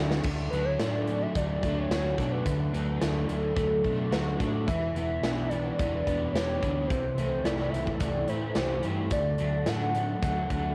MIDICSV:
0, 0, Header, 1, 7, 480
1, 0, Start_track
1, 0, Key_signature, 2, "major"
1, 0, Tempo, 554017
1, 217, Time_signature, 4, 2, 24, 8
1, 9312, End_track
2, 0, Start_track
2, 0, Title_t, "Soft synth lead"
2, 0, Program_c, 0, 80
2, 436, Note_on_c, 0, 71, 86
2, 562, Note_on_c, 0, 73, 90
2, 575, Note_off_c, 0, 71, 0
2, 694, Note_on_c, 0, 74, 92
2, 707, Note_off_c, 0, 73, 0
2, 1054, Note_on_c, 0, 76, 106
2, 1067, Note_off_c, 0, 74, 0
2, 1174, Note_on_c, 0, 74, 97
2, 1187, Note_off_c, 0, 76, 0
2, 1537, Note_on_c, 0, 73, 99
2, 1550, Note_off_c, 0, 74, 0
2, 2006, Note_on_c, 0, 71, 82
2, 2019, Note_off_c, 0, 73, 0
2, 2609, Note_off_c, 0, 71, 0
2, 2831, Note_on_c, 0, 69, 99
2, 3064, Note_off_c, 0, 69, 0
2, 3089, Note_on_c, 0, 69, 98
2, 3777, Note_off_c, 0, 69, 0
2, 4042, Note_on_c, 0, 76, 127
2, 4758, Note_on_c, 0, 74, 99
2, 4771, Note_off_c, 0, 76, 0
2, 5219, Note_off_c, 0, 74, 0
2, 5225, Note_on_c, 0, 74, 82
2, 5470, Note_on_c, 0, 73, 90
2, 5483, Note_off_c, 0, 74, 0
2, 5945, Note_on_c, 0, 72, 85
2, 5958, Note_off_c, 0, 73, 0
2, 6187, Note_off_c, 0, 72, 0
2, 6192, Note_on_c, 0, 72, 87
2, 6440, Note_on_c, 0, 74, 86
2, 6453, Note_off_c, 0, 72, 0
2, 6667, Note_on_c, 0, 76, 95
2, 6680, Note_off_c, 0, 74, 0
2, 6922, Note_on_c, 0, 74, 94
2, 6935, Note_off_c, 0, 76, 0
2, 7176, Note_on_c, 0, 72, 79
2, 7189, Note_off_c, 0, 74, 0
2, 7658, Note_off_c, 0, 72, 0
2, 7903, Note_on_c, 0, 74, 108
2, 8381, Note_on_c, 0, 78, 105
2, 8394, Note_off_c, 0, 74, 0
2, 8859, Note_off_c, 0, 78, 0
2, 8877, Note_on_c, 0, 78, 110
2, 9312, Note_off_c, 0, 78, 0
2, 9312, End_track
3, 0, Start_track
3, 0, Title_t, "Overdriven electric guitar"
3, 0, Program_c, 1, 29
3, 0, Note_on_c, 1, 50, 74
3, 0, Note_on_c, 1, 54, 76
3, 0, Note_on_c, 1, 57, 77
3, 0, Note_on_c, 1, 62, 84
3, 201, Note_off_c, 1, 50, 0
3, 208, Note_off_c, 1, 54, 0
3, 209, Note_off_c, 1, 57, 0
3, 212, Note_off_c, 1, 62, 0
3, 227, Note_on_c, 1, 50, 77
3, 468, Note_on_c, 1, 57, 70
3, 702, Note_on_c, 1, 62, 74
3, 948, Note_on_c, 1, 54, 69
3, 1173, Note_off_c, 1, 57, 0
3, 1184, Note_on_c, 1, 57, 73
3, 1417, Note_off_c, 1, 50, 0
3, 1425, Note_off_c, 1, 62, 0
3, 1429, Note_on_c, 1, 62, 62
3, 1653, Note_on_c, 1, 66, 69
3, 1893, Note_off_c, 1, 62, 0
3, 1897, Note_on_c, 1, 62, 63
3, 2130, Note_on_c, 1, 50, 74
3, 2138, Note_off_c, 1, 54, 0
3, 2360, Note_off_c, 1, 57, 0
3, 2371, Note_on_c, 1, 57, 68
3, 2612, Note_off_c, 1, 62, 0
3, 2615, Note_on_c, 1, 62, 70
3, 2852, Note_off_c, 1, 66, 0
3, 2855, Note_on_c, 1, 54, 65
3, 3077, Note_off_c, 1, 57, 0
3, 3087, Note_on_c, 1, 57, 73
3, 3325, Note_off_c, 1, 62, 0
3, 3332, Note_off_c, 1, 50, 0
3, 3335, Note_on_c, 1, 62, 62
3, 3570, Note_on_c, 1, 66, 70
3, 3813, Note_off_c, 1, 62, 0
3, 3823, Note_on_c, 1, 62, 63
3, 4052, Note_off_c, 1, 57, 0
3, 4053, Note_off_c, 1, 54, 0
3, 4053, Note_off_c, 1, 66, 0
3, 4057, Note_on_c, 1, 52, 75
3, 4059, Note_off_c, 1, 62, 0
3, 4303, Note_on_c, 1, 59, 67
3, 4535, Note_on_c, 1, 62, 73
3, 4773, Note_off_c, 1, 52, 0
3, 4783, Note_on_c, 1, 52, 69
3, 5011, Note_off_c, 1, 59, 0
3, 5021, Note_on_c, 1, 59, 71
3, 5253, Note_off_c, 1, 62, 0
3, 5263, Note_on_c, 1, 62, 64
3, 5503, Note_on_c, 1, 67, 74
3, 5739, Note_off_c, 1, 62, 0
3, 5750, Note_on_c, 1, 62, 68
3, 5981, Note_off_c, 1, 59, 0
3, 5982, Note_off_c, 1, 67, 0
3, 5983, Note_off_c, 1, 52, 0
3, 5984, Note_on_c, 1, 48, 74
3, 5985, Note_off_c, 1, 62, 0
3, 6222, Note_on_c, 1, 57, 61
3, 6460, Note_on_c, 1, 64, 72
3, 6704, Note_on_c, 1, 52, 67
3, 6939, Note_off_c, 1, 57, 0
3, 6942, Note_on_c, 1, 57, 70
3, 7171, Note_off_c, 1, 64, 0
3, 7182, Note_on_c, 1, 64, 64
3, 7183, Note_off_c, 1, 48, 0
3, 7415, Note_on_c, 1, 67, 69
3, 7636, Note_off_c, 1, 64, 0
3, 7646, Note_on_c, 1, 64, 60
3, 7893, Note_off_c, 1, 64, 0
3, 7894, Note_on_c, 1, 50, 77
3, 7897, Note_off_c, 1, 67, 0
3, 7902, Note_off_c, 1, 52, 0
3, 8128, Note_off_c, 1, 57, 0
3, 8131, Note_on_c, 1, 57, 63
3, 8374, Note_on_c, 1, 62, 66
3, 8622, Note_on_c, 1, 54, 63
3, 8847, Note_off_c, 1, 57, 0
3, 8857, Note_on_c, 1, 57, 75
3, 9094, Note_off_c, 1, 50, 0
3, 9097, Note_off_c, 1, 62, 0
3, 9100, Note_on_c, 1, 62, 64
3, 9312, Note_off_c, 1, 54, 0
3, 9312, Note_off_c, 1, 57, 0
3, 9312, Note_off_c, 1, 62, 0
3, 9312, End_track
4, 0, Start_track
4, 0, Title_t, "Clean electric guitar"
4, 0, Program_c, 2, 27
4, 0, Note_on_c, 2, 57, 75
4, 0, Note_on_c, 2, 61, 70
4, 0, Note_on_c, 2, 66, 83
4, 198, Note_off_c, 2, 57, 0
4, 208, Note_on_c, 2, 57, 70
4, 209, Note_off_c, 2, 61, 0
4, 215, Note_off_c, 2, 66, 0
4, 459, Note_on_c, 2, 62, 66
4, 692, Note_off_c, 2, 57, 0
4, 702, Note_on_c, 2, 57, 74
4, 920, Note_off_c, 2, 57, 0
4, 930, Note_on_c, 2, 57, 64
4, 1163, Note_off_c, 2, 57, 0
4, 1174, Note_on_c, 2, 57, 61
4, 1398, Note_off_c, 2, 57, 0
4, 1408, Note_on_c, 2, 57, 66
4, 1653, Note_on_c, 2, 66, 73
4, 1884, Note_off_c, 2, 62, 0
4, 1887, Note_on_c, 2, 62, 66
4, 2121, Note_off_c, 2, 57, 0
4, 2132, Note_on_c, 2, 57, 69
4, 2362, Note_off_c, 2, 62, 0
4, 2365, Note_on_c, 2, 62, 72
4, 2598, Note_off_c, 2, 57, 0
4, 2608, Note_on_c, 2, 57, 71
4, 2832, Note_off_c, 2, 57, 0
4, 2843, Note_on_c, 2, 57, 61
4, 2852, Note_off_c, 2, 66, 0
4, 3074, Note_off_c, 2, 57, 0
4, 3085, Note_on_c, 2, 57, 70
4, 3317, Note_off_c, 2, 57, 0
4, 3327, Note_on_c, 2, 57, 65
4, 3564, Note_on_c, 2, 66, 77
4, 3570, Note_off_c, 2, 62, 0
4, 3817, Note_on_c, 2, 62, 68
4, 4050, Note_off_c, 2, 66, 0
4, 4052, Note_off_c, 2, 57, 0
4, 4055, Note_on_c, 2, 52, 71
4, 4056, Note_off_c, 2, 62, 0
4, 4311, Note_on_c, 2, 59, 65
4, 4545, Note_off_c, 2, 52, 0
4, 4556, Note_on_c, 2, 52, 73
4, 4769, Note_off_c, 2, 59, 0
4, 4779, Note_on_c, 2, 59, 71
4, 5018, Note_off_c, 2, 52, 0
4, 5028, Note_on_c, 2, 52, 70
4, 5259, Note_off_c, 2, 59, 0
4, 5269, Note_on_c, 2, 59, 64
4, 5517, Note_on_c, 2, 67, 74
4, 5744, Note_on_c, 2, 62, 60
4, 5975, Note_off_c, 2, 52, 0
4, 5982, Note_off_c, 2, 62, 0
4, 5985, Note_off_c, 2, 59, 0
4, 5985, Note_on_c, 2, 52, 73
4, 5989, Note_off_c, 2, 67, 0
4, 6218, Note_on_c, 2, 57, 73
4, 6452, Note_off_c, 2, 52, 0
4, 6463, Note_on_c, 2, 52, 73
4, 6699, Note_off_c, 2, 57, 0
4, 6702, Note_on_c, 2, 57, 62
4, 6929, Note_off_c, 2, 52, 0
4, 6940, Note_on_c, 2, 52, 70
4, 7183, Note_off_c, 2, 57, 0
4, 7187, Note_on_c, 2, 57, 63
4, 7420, Note_on_c, 2, 67, 72
4, 7661, Note_on_c, 2, 60, 62
4, 7897, Note_off_c, 2, 57, 0
4, 7900, Note_off_c, 2, 52, 0
4, 7900, Note_off_c, 2, 60, 0
4, 7900, Note_off_c, 2, 67, 0
4, 7901, Note_on_c, 2, 57, 71
4, 8139, Note_on_c, 2, 62, 67
4, 8367, Note_off_c, 2, 57, 0
4, 8378, Note_on_c, 2, 57, 71
4, 8611, Note_off_c, 2, 57, 0
4, 8621, Note_on_c, 2, 57, 67
4, 8853, Note_off_c, 2, 57, 0
4, 8863, Note_on_c, 2, 57, 67
4, 9083, Note_off_c, 2, 57, 0
4, 9093, Note_on_c, 2, 57, 64
4, 9312, Note_off_c, 2, 57, 0
4, 9312, Note_off_c, 2, 62, 0
4, 9312, End_track
5, 0, Start_track
5, 0, Title_t, "Overdriven electric guitar"
5, 0, Program_c, 3, 29
5, 0, Note_on_c, 3, 50, 80
5, 0, Note_on_c, 3, 54, 70
5, 0, Note_on_c, 3, 57, 81
5, 0, Note_on_c, 3, 62, 86
5, 205, Note_off_c, 3, 50, 0
5, 215, Note_on_c, 3, 50, 71
5, 218, Note_off_c, 3, 54, 0
5, 222, Note_off_c, 3, 57, 0
5, 226, Note_off_c, 3, 62, 0
5, 462, Note_on_c, 3, 54, 67
5, 703, Note_on_c, 3, 57, 63
5, 950, Note_on_c, 3, 62, 64
5, 1165, Note_off_c, 3, 54, 0
5, 1176, Note_on_c, 3, 54, 70
5, 1411, Note_off_c, 3, 50, 0
5, 1421, Note_off_c, 3, 57, 0
5, 1432, Note_on_c, 3, 57, 68
5, 1647, Note_off_c, 3, 54, 0
5, 1657, Note_on_c, 3, 54, 67
5, 1890, Note_off_c, 3, 57, 0
5, 1900, Note_on_c, 3, 57, 65
5, 2132, Note_on_c, 3, 50, 70
5, 2364, Note_off_c, 3, 54, 0
5, 2374, Note_on_c, 3, 54, 68
5, 2594, Note_off_c, 3, 57, 0
5, 2604, Note_on_c, 3, 57, 68
5, 2845, Note_off_c, 3, 62, 0
5, 2848, Note_on_c, 3, 62, 65
5, 3080, Note_off_c, 3, 54, 0
5, 3090, Note_on_c, 3, 54, 68
5, 3317, Note_off_c, 3, 57, 0
5, 3328, Note_on_c, 3, 57, 70
5, 3333, Note_off_c, 3, 50, 0
5, 3563, Note_off_c, 3, 54, 0
5, 3573, Note_on_c, 3, 54, 64
5, 3805, Note_off_c, 3, 57, 0
5, 3816, Note_on_c, 3, 57, 68
5, 4053, Note_off_c, 3, 62, 0
5, 4054, Note_off_c, 3, 54, 0
5, 4055, Note_off_c, 3, 57, 0
5, 4059, Note_on_c, 3, 52, 75
5, 4287, Note_off_c, 3, 52, 0
5, 4297, Note_on_c, 3, 52, 69
5, 4542, Note_on_c, 3, 59, 64
5, 4784, Note_on_c, 3, 62, 66
5, 5021, Note_off_c, 3, 52, 0
5, 5031, Note_on_c, 3, 52, 75
5, 5258, Note_off_c, 3, 59, 0
5, 5269, Note_on_c, 3, 59, 65
5, 5496, Note_off_c, 3, 52, 0
5, 5507, Note_on_c, 3, 52, 65
5, 5739, Note_off_c, 3, 59, 0
5, 5749, Note_on_c, 3, 59, 69
5, 5983, Note_off_c, 3, 52, 0
5, 5983, Note_off_c, 3, 62, 0
5, 5984, Note_off_c, 3, 59, 0
5, 5987, Note_on_c, 3, 48, 69
5, 6232, Note_on_c, 3, 52, 74
5, 6472, Note_on_c, 3, 57, 71
5, 6711, Note_on_c, 3, 64, 64
5, 6933, Note_off_c, 3, 52, 0
5, 6943, Note_on_c, 3, 52, 69
5, 7178, Note_off_c, 3, 57, 0
5, 7182, Note_on_c, 3, 57, 65
5, 7184, Note_off_c, 3, 48, 0
5, 7415, Note_off_c, 3, 52, 0
5, 7425, Note_on_c, 3, 52, 71
5, 7661, Note_off_c, 3, 57, 0
5, 7664, Note_on_c, 3, 57, 67
5, 7902, Note_off_c, 3, 52, 0
5, 7905, Note_off_c, 3, 64, 0
5, 7907, Note_on_c, 3, 50, 71
5, 8145, Note_on_c, 3, 54, 66
5, 8389, Note_off_c, 3, 57, 0
5, 8392, Note_on_c, 3, 57, 67
5, 8628, Note_on_c, 3, 62, 66
5, 8854, Note_off_c, 3, 54, 0
5, 8865, Note_on_c, 3, 54, 72
5, 9098, Note_off_c, 3, 57, 0
5, 9101, Note_off_c, 3, 50, 0
5, 9108, Note_on_c, 3, 57, 68
5, 9312, Note_off_c, 3, 54, 0
5, 9312, Note_off_c, 3, 57, 0
5, 9312, Note_off_c, 3, 62, 0
5, 9312, End_track
6, 0, Start_track
6, 0, Title_t, "Fingered electric bass"
6, 0, Program_c, 4, 33
6, 0, Note_on_c, 4, 38, 87
6, 199, Note_off_c, 4, 38, 0
6, 203, Note_on_c, 4, 38, 91
6, 411, Note_off_c, 4, 38, 0
6, 451, Note_on_c, 4, 38, 83
6, 654, Note_off_c, 4, 38, 0
6, 687, Note_on_c, 4, 45, 89
6, 1094, Note_off_c, 4, 45, 0
6, 1170, Note_on_c, 4, 38, 81
6, 1373, Note_off_c, 4, 38, 0
6, 1408, Note_on_c, 4, 38, 81
6, 1612, Note_off_c, 4, 38, 0
6, 1643, Note_on_c, 4, 38, 93
6, 1849, Note_off_c, 4, 38, 0
6, 1890, Note_on_c, 4, 47, 84
6, 2093, Note_off_c, 4, 47, 0
6, 2128, Note_on_c, 4, 38, 94
6, 2332, Note_off_c, 4, 38, 0
6, 2367, Note_on_c, 4, 38, 86
6, 2572, Note_off_c, 4, 38, 0
6, 2614, Note_on_c, 4, 38, 85
6, 2816, Note_off_c, 4, 38, 0
6, 2847, Note_on_c, 4, 38, 82
6, 3052, Note_off_c, 4, 38, 0
6, 3092, Note_on_c, 4, 38, 89
6, 3295, Note_off_c, 4, 38, 0
6, 3332, Note_on_c, 4, 47, 79
6, 3536, Note_off_c, 4, 47, 0
6, 3559, Note_on_c, 4, 38, 93
6, 3768, Note_off_c, 4, 38, 0
6, 3814, Note_on_c, 4, 45, 90
6, 4052, Note_on_c, 4, 28, 96
6, 4065, Note_off_c, 4, 45, 0
6, 4257, Note_off_c, 4, 28, 0
6, 4284, Note_on_c, 4, 28, 87
6, 4492, Note_off_c, 4, 28, 0
6, 4520, Note_on_c, 4, 35, 87
6, 4934, Note_off_c, 4, 35, 0
6, 5014, Note_on_c, 4, 28, 91
6, 5218, Note_off_c, 4, 28, 0
6, 5259, Note_on_c, 4, 28, 83
6, 5462, Note_off_c, 4, 28, 0
6, 5482, Note_on_c, 4, 28, 96
6, 5692, Note_off_c, 4, 28, 0
6, 5739, Note_on_c, 4, 38, 78
6, 5942, Note_off_c, 4, 38, 0
6, 5985, Note_on_c, 4, 36, 90
6, 6186, Note_off_c, 4, 36, 0
6, 6214, Note_on_c, 4, 36, 82
6, 6420, Note_off_c, 4, 36, 0
6, 6447, Note_on_c, 4, 36, 86
6, 6656, Note_off_c, 4, 36, 0
6, 6697, Note_on_c, 4, 36, 84
6, 6901, Note_off_c, 4, 36, 0
6, 6937, Note_on_c, 4, 36, 81
6, 7141, Note_off_c, 4, 36, 0
6, 7178, Note_on_c, 4, 45, 84
6, 7382, Note_off_c, 4, 45, 0
6, 7415, Note_on_c, 4, 36, 83
6, 7620, Note_off_c, 4, 36, 0
6, 7656, Note_on_c, 4, 43, 80
6, 7860, Note_off_c, 4, 43, 0
6, 7891, Note_on_c, 4, 38, 95
6, 8097, Note_off_c, 4, 38, 0
6, 8141, Note_on_c, 4, 38, 83
6, 8343, Note_off_c, 4, 38, 0
6, 8380, Note_on_c, 4, 45, 93
6, 8784, Note_off_c, 4, 45, 0
6, 8858, Note_on_c, 4, 38, 87
6, 9060, Note_off_c, 4, 38, 0
6, 9095, Note_on_c, 4, 38, 82
6, 9298, Note_off_c, 4, 38, 0
6, 9312, End_track
7, 0, Start_track
7, 0, Title_t, "Drums"
7, 91, Note_on_c, 9, 38, 86
7, 177, Note_off_c, 9, 38, 0
7, 200, Note_on_c, 9, 49, 96
7, 209, Note_on_c, 9, 36, 101
7, 287, Note_off_c, 9, 49, 0
7, 296, Note_off_c, 9, 36, 0
7, 457, Note_on_c, 9, 42, 60
7, 544, Note_off_c, 9, 42, 0
7, 689, Note_on_c, 9, 38, 113
7, 689, Note_on_c, 9, 42, 86
7, 775, Note_off_c, 9, 38, 0
7, 775, Note_off_c, 9, 42, 0
7, 930, Note_on_c, 9, 42, 62
7, 1017, Note_off_c, 9, 42, 0
7, 1172, Note_on_c, 9, 36, 113
7, 1173, Note_on_c, 9, 42, 92
7, 1259, Note_off_c, 9, 36, 0
7, 1260, Note_off_c, 9, 42, 0
7, 1412, Note_on_c, 9, 36, 79
7, 1419, Note_on_c, 9, 42, 70
7, 1498, Note_off_c, 9, 36, 0
7, 1505, Note_off_c, 9, 42, 0
7, 1657, Note_on_c, 9, 38, 106
7, 1657, Note_on_c, 9, 42, 90
7, 1743, Note_off_c, 9, 38, 0
7, 1743, Note_off_c, 9, 42, 0
7, 1891, Note_on_c, 9, 36, 78
7, 1902, Note_on_c, 9, 42, 78
7, 1978, Note_off_c, 9, 36, 0
7, 1989, Note_off_c, 9, 42, 0
7, 2130, Note_on_c, 9, 36, 98
7, 2131, Note_on_c, 9, 42, 94
7, 2217, Note_off_c, 9, 36, 0
7, 2217, Note_off_c, 9, 42, 0
7, 2378, Note_on_c, 9, 42, 71
7, 2465, Note_off_c, 9, 42, 0
7, 2614, Note_on_c, 9, 38, 103
7, 2614, Note_on_c, 9, 42, 92
7, 2701, Note_off_c, 9, 38, 0
7, 2701, Note_off_c, 9, 42, 0
7, 2853, Note_on_c, 9, 42, 68
7, 2940, Note_off_c, 9, 42, 0
7, 3092, Note_on_c, 9, 36, 112
7, 3096, Note_on_c, 9, 42, 92
7, 3178, Note_off_c, 9, 36, 0
7, 3183, Note_off_c, 9, 42, 0
7, 3333, Note_on_c, 9, 36, 75
7, 3337, Note_on_c, 9, 42, 60
7, 3420, Note_off_c, 9, 36, 0
7, 3423, Note_off_c, 9, 42, 0
7, 3575, Note_on_c, 9, 38, 109
7, 3575, Note_on_c, 9, 42, 82
7, 3662, Note_off_c, 9, 38, 0
7, 3662, Note_off_c, 9, 42, 0
7, 3813, Note_on_c, 9, 36, 81
7, 3816, Note_on_c, 9, 42, 71
7, 3900, Note_off_c, 9, 36, 0
7, 3903, Note_off_c, 9, 42, 0
7, 4054, Note_on_c, 9, 36, 109
7, 4055, Note_on_c, 9, 42, 88
7, 4141, Note_off_c, 9, 36, 0
7, 4141, Note_off_c, 9, 42, 0
7, 4299, Note_on_c, 9, 42, 62
7, 4386, Note_off_c, 9, 42, 0
7, 4536, Note_on_c, 9, 38, 112
7, 4536, Note_on_c, 9, 42, 82
7, 4623, Note_off_c, 9, 38, 0
7, 4623, Note_off_c, 9, 42, 0
7, 4776, Note_on_c, 9, 42, 67
7, 4862, Note_off_c, 9, 42, 0
7, 5018, Note_on_c, 9, 42, 89
7, 5020, Note_on_c, 9, 36, 108
7, 5105, Note_off_c, 9, 42, 0
7, 5106, Note_off_c, 9, 36, 0
7, 5259, Note_on_c, 9, 36, 71
7, 5264, Note_on_c, 9, 42, 63
7, 5346, Note_off_c, 9, 36, 0
7, 5351, Note_off_c, 9, 42, 0
7, 5506, Note_on_c, 9, 38, 115
7, 5506, Note_on_c, 9, 42, 86
7, 5593, Note_off_c, 9, 38, 0
7, 5593, Note_off_c, 9, 42, 0
7, 5742, Note_on_c, 9, 36, 82
7, 5746, Note_on_c, 9, 42, 69
7, 5828, Note_off_c, 9, 36, 0
7, 5833, Note_off_c, 9, 42, 0
7, 5982, Note_on_c, 9, 36, 108
7, 5986, Note_on_c, 9, 42, 90
7, 6068, Note_off_c, 9, 36, 0
7, 6072, Note_off_c, 9, 42, 0
7, 6220, Note_on_c, 9, 42, 67
7, 6307, Note_off_c, 9, 42, 0
7, 6456, Note_on_c, 9, 38, 110
7, 6456, Note_on_c, 9, 42, 87
7, 6543, Note_off_c, 9, 38, 0
7, 6543, Note_off_c, 9, 42, 0
7, 6708, Note_on_c, 9, 42, 69
7, 6795, Note_off_c, 9, 42, 0
7, 6820, Note_on_c, 9, 36, 77
7, 6906, Note_off_c, 9, 36, 0
7, 6933, Note_on_c, 9, 42, 91
7, 6937, Note_on_c, 9, 36, 98
7, 7019, Note_off_c, 9, 42, 0
7, 7024, Note_off_c, 9, 36, 0
7, 7174, Note_on_c, 9, 42, 65
7, 7260, Note_off_c, 9, 42, 0
7, 7410, Note_on_c, 9, 38, 106
7, 7410, Note_on_c, 9, 42, 91
7, 7496, Note_off_c, 9, 38, 0
7, 7496, Note_off_c, 9, 42, 0
7, 7649, Note_on_c, 9, 42, 75
7, 7736, Note_off_c, 9, 42, 0
7, 7888, Note_on_c, 9, 42, 86
7, 7893, Note_on_c, 9, 36, 109
7, 7975, Note_off_c, 9, 42, 0
7, 7979, Note_off_c, 9, 36, 0
7, 8127, Note_on_c, 9, 42, 57
7, 8213, Note_off_c, 9, 42, 0
7, 8371, Note_on_c, 9, 38, 115
7, 8371, Note_on_c, 9, 42, 86
7, 8457, Note_off_c, 9, 38, 0
7, 8457, Note_off_c, 9, 42, 0
7, 8617, Note_on_c, 9, 42, 67
7, 8704, Note_off_c, 9, 42, 0
7, 8858, Note_on_c, 9, 36, 104
7, 8863, Note_on_c, 9, 42, 88
7, 8945, Note_off_c, 9, 36, 0
7, 8949, Note_off_c, 9, 42, 0
7, 9098, Note_on_c, 9, 42, 66
7, 9099, Note_on_c, 9, 36, 73
7, 9185, Note_off_c, 9, 36, 0
7, 9185, Note_off_c, 9, 42, 0
7, 9312, End_track
0, 0, End_of_file